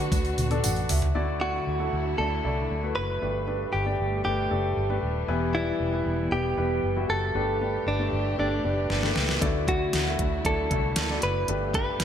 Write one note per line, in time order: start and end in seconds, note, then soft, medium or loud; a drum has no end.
0.00 1.11 D3 medium
0.00 1.15 D3 medium
0.00 1.11 A3 medium
0.00 0.51 D4 medium
0.00 0.51 F#4 medium
0.00 0.60 F#4 loud
0.00 1.11 F#4 medium
0.00 0.51 A4 medium
0.00 0.42 B4 medium
0.12 0.33 D2 loud
0.12 kick loud
0.12 open hi-hat medium
0.12 high tom medium
0.12 tambourine soft
0.25 open hi-hat soft
0.38 0.59 D2 medium
0.38 open hi-hat medium
0.38 mid tom medium
0.38 tambourine soft
0.51 1.10 D4 medium
0.51 1.10 F#4 medium
0.51 1.10 A4 medium
0.51 open hi-hat medium
0.51 mid tom medium
0.63 0.85 A1 medium
0.63 0.88 F#5 medium
0.63 mid tom medium
0.63 open hi-hat loud
0.63 tambourine medium
0.76 open hi-hat soft
0.89 1.11 C#2 medium
0.89 1.13 E5 medium
0.89 floor tom loud
0.89 open hi-hat medium
0.89 open hi-hat loud
0.89 tambourine medium
1.02 floor tom medium
1.02 open hi-hat medium
1.15 1.58 D2 medium
1.15 1.89 D3 medium
1.15 3.20 D3 medium
1.15 3.20 F#3 medium
1.15 1.39 A3 medium
1.15 1.39 E4 medium
1.15 3.20 E4 medium
1.15 1.39 F#4 medium
1.15 1.39 D5 medium
1.41 1.76 A3 medium
1.41 1.76 E4 medium
1.41 1.76 F#4 medium
1.41 2.18 F#4 medium
1.41 1.76 D5 medium
1.67 1.88 D2 medium
1.79 2.15 A3 medium
1.79 2.15 E4 medium
1.79 2.15 F#4 medium
1.79 2.15 A4 medium
1.93 2.14 D2 medium
2.18 2.40 D2 medium
2.18 2.42 A3 medium
2.18 2.42 E4 medium
2.18 2.42 F#4 soft
2.18 2.95 A4 medium
2.18 2.42 D5 medium
2.44 2.66 C2 medium
2.44 2.80 A3 medium
2.44 2.80 E4 medium
2.44 2.80 F#4 medium
2.44 2.80 D5 medium
2.71 2.92 D2 medium
2.83 3.18 A3 medium
2.83 3.18 E4 medium
2.83 3.18 F#4 medium
2.83 3.18 B4 medium
2.95 3.18 F#1 medium
2.95 3.69 B4 loud
3.22 3.65 G1 loud
3.22 3.95 G2 medium
3.22 5.26 B2 medium
3.22 7.31 G3 medium
3.22 3.45 A3 medium
3.22 5.26 A3 medium
3.22 3.45 D4 medium
3.22 3.46 G4 medium
3.22 3.45 B4 medium
3.47 3.83 A3 medium
3.47 3.83 D4 medium
3.47 3.83 G4 medium
3.47 3.83 B4 medium
3.73 3.95 G1 medium
3.73 4.21 G4 medium
3.86 4.22 A3 medium
3.86 4.22 D4 medium
3.86 4.22 G4 medium
3.86 4.22 D5 medium
4.00 4.21 G1 medium
4.25 4.47 G1 medium
4.25 4.49 A3 medium
4.25 4.49 D4 medium
4.25 4.98 G4 medium
4.25 4.49 G4 medium
4.25 4.49 B4 medium
4.51 4.72 F#1 medium
4.51 4.86 A3 medium
4.51 4.86 D4 medium
4.51 4.86 G4 medium
4.51 4.86 A4 medium
4.77 4.98 G1 medium
4.90 5.25 A3 medium
4.90 5.25 D4 medium
4.90 5.25 G4 medium
4.90 5.25 B4 medium
5.03 5.24 D#1 medium
5.28 5.71 E1 loud
5.28 6.02 E3 medium
5.28 7.33 E3 medium
5.28 5.52 G3 medium
5.28 5.52 B3 medium
5.28 7.33 B3 medium
5.28 5.52 E4 medium
5.28 5.52 B4 medium
5.54 5.89 G3 medium
5.54 5.89 B3 medium
5.54 5.89 E4 medium
5.54 6.34 E4 medium
5.54 5.90 D5 medium
5.80 6.01 E1 medium
5.93 6.28 G3 medium
5.93 6.28 B3 medium
5.93 6.28 E4 medium
5.93 6.29 B4 medium
6.06 6.27 E1 medium
6.32 6.53 E1 medium
6.32 6.56 G3 medium
6.32 6.55 B3 medium
6.32 6.55 E4 medium
6.32 7.09 G4 medium
6.32 6.56 B4 medium
6.58 6.79 E1 medium
6.58 6.93 G3 medium
6.58 6.93 B3 medium
6.58 6.93 E4 medium
6.58 6.93 B4 medium
6.84 7.05 F#1 medium
6.96 7.32 G3 medium
6.96 7.32 B3 soft
6.96 7.32 E4 medium
6.96 7.32 F#4 medium
7.09 7.31 F#1 medium
7.09 7.89 A4 loud
7.35 7.77 G1 loud
7.35 8.09 G2 medium
7.35 9.40 B2 medium
7.35 7.59 A3 medium
7.35 9.40 A3 medium
7.35 7.59 D4 medium
7.35 7.59 G4 medium
7.35 9.40 G4 medium
7.35 7.59 B4 medium
7.61 7.96 A3 medium
7.61 7.96 D4 medium
7.61 7.96 G4 medium
7.61 7.96 B4 medium
7.86 8.08 G1 medium
7.86 8.35 D4 medium
7.99 8.35 A3 medium
7.99 8.35 D4 medium
7.99 8.35 G4 medium
7.99 8.35 D5 medium
8.13 8.34 G1 medium
8.38 8.60 G1 medium
8.38 8.62 A3 medium
8.38 8.62 D4 medium
8.38 9.12 D4 medium
8.38 8.62 G4 soft
8.38 8.62 A4 medium
8.64 8.85 F#1 medium
8.64 9.00 A3 medium
8.64 9.00 D4 medium
8.64 9.00 G4 medium
8.64 9.00 B4 medium
8.90 9.11 G1 medium
8.90 snare medium
9.03 9.38 A3 medium
9.03 9.38 D4 medium
9.03 9.38 G4 medium
9.03 9.38 B4 medium
9.03 snare medium
9.16 9.37 C#2 medium
9.16 snare medium
9.29 snare medium
9.41 9.84 D2 medium
9.41 10.15 D3 medium
9.41 11.46 D3 medium
9.41 11.46 F#3 medium
9.41 9.65 A3 medium
9.41 9.65 E4 medium
9.41 11.46 E4 medium
9.41 9.65 F#4 medium
9.41 9.65 D5 medium
9.41 kick loud
9.41 closed hi-hat medium
9.67 10.03 A3 medium
9.67 10.03 E4 medium
9.67 10.03 F#4 medium
9.67 10.41 F#4 medium
9.67 10.03 D5 medium
9.67 kick medium
9.67 closed hi-hat medium
9.93 10.15 D2 medium
9.93 snare medium
9.93 closed hi-hat medium
10.06 10.41 A3 medium
10.06 10.41 E4 medium
10.06 10.41 F#4 medium
10.06 10.41 E5 medium
10.19 10.40 D2 medium
10.19 kick medium
10.19 closed hi-hat medium
10.45 10.66 D2 medium
10.45 10.68 A3 medium
10.45 10.68 E4 medium
10.45 10.69 F#4 medium
10.45 11.19 A4 medium
10.45 10.69 D5 medium
10.45 kick medium
10.45 closed hi-hat medium
10.71 10.92 C2 medium
10.71 11.06 A3 medium
10.71 11.06 E4 medium
10.71 11.06 F#4 medium
10.71 11.06 A4 medium
10.71 kick medium
10.71 closed hi-hat medium
10.96 11.18 D2 medium
10.96 snare loud
10.96 closed hi-hat loud
11.10 11.45 A3 medium
11.10 11.45 E4 medium
11.10 11.45 F#4 medium
11.10 11.45 D5 medium
11.10 snare soft
11.22 11.44 F#1 medium
11.22 11.47 B4 medium
11.22 closed hi-hat medium
11.48 11.91 G1 loud
11.48 12.04 G2 medium
11.48 12.04 B2 medium
11.48 12.04 A3 medium
11.48 11.72 A3 medium
11.48 11.72 D4 medium
11.48 12.04 G4 medium
11.48 11.72 G4 medium
11.48 11.72 B4 medium
11.48 closed hi-hat medium
11.74 12.04 A3 medium
11.74 12.04 D4 medium
11.74 12.04 G4 medium
11.74 12.04 B4 medium
11.74 kick medium
11.74 closed hi-hat medium
12.00 12.04 G1 medium
12.00 snare loud
12.00 closed hi-hat medium